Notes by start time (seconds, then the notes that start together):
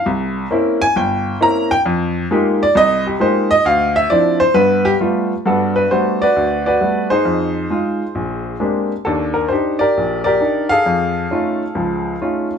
0.06 C2
0.51 A#3 C4 C#4 E4
0.82 G#5
0.96 G1 G5
1.41 A#3 C4 C#4 E4 A#5
1.71 G5
1.86 F2
2.31 G#3 A#3 D#4 F4 G4
2.63 D5
2.75 C2 D#5
3.07 G4
3.20 G#3 A#3 D#4 F4 G4 C5
3.51 D#5
3.65 D2 F5
3.96 E5
4.10 F3 C4 D4 E4 D5
4.40 C5
4.54 G2 B3 B4
4.85 G4
5.00 G3 A3 B3 F4
5.45 G2 B3 D4 F#4 A4
5.76 B4
5.91 G3 A3 B3 F#4 C5
6.22 F#4 B4 D5
6.36 D2
6.66 F#4 B4 D5
6.81 G3 A3 B3 F#4
7.10 D#4 G#4 C5
7.25 F2
7.70 G#3 D#4 F4
8.15 A#1
8.60 G#3 A#3 C4 D4 G4
9.05 D#2 D4 A4
9.34 A#4
9.49 D4 D#4 G4 C5
9.79 G4 A#4 D5
9.97 A#1
10.24 G4 A#4 D5
10.40 D4 D#4 G4
10.69 G#4 A4 F5
10.86 F2
11.31 A3 C#4 D#4 F4
11.75 C#2 F3
12.21 A3 C#4 D#4 F4